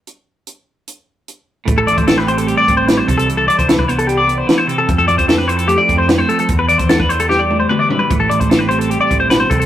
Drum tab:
HH |x---x---x---x---|x-xxx-xxx-x-x-xx|x-xxx-xxx-x-x-x-|x-xxx-xxx-x-x-xx|
SD |----------------|----oo------o---|----o-------o---|----oo------o---|
T1 |----------------|----------------|----------------|----------------|
T2 |----------------|----------------|----------------|----------------|
FT |----------------|----------------|----------------|----------------|
BD |----------------|o--o------o---o-|---o-o----------|o--o------o-----|

HH |x-xxx-xx--------|x-xxx-xxx-x-x-xx|
SD |----o---o-------|----o-------o---|
T1 |----------o-----|----------------|
T2 |------------o---|----------------|
FT |--------------o-|----------------|
BD |o--o-o----------|o--o------o---o-|